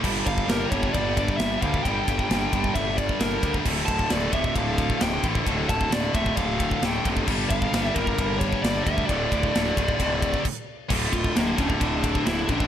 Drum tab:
CC |x---------------|----------------|x---------------|----------------|
RD |--x-x-x-x-x-x-x-|x-x-x-x-x-x-x-x-|--x-x-x-x-x-x-x-|x-x-x-x-x-x-x-x-|
SD |----o-------o---|----o-------o---|----o-------o---|----o-------o---|
BD |o-oo--ooo-oo--oo|o-oo--ooo-oo--oo|o-oo--ooo-oo--oo|o-oo--ooo-oo--oo|

CC |x---------------|------------x---|x---------------|
RD |--x-x-x-x-x-x-x-|x-x-x-x-x-x-----|--x-x-x-x-x-x-x-|
SD |----o-------o---|----o-----------|----o-------o---|
BD |o-oo--ooo-oo--oo|o-oo--ooo-ooo---|o-oo--ooo-oo--oo|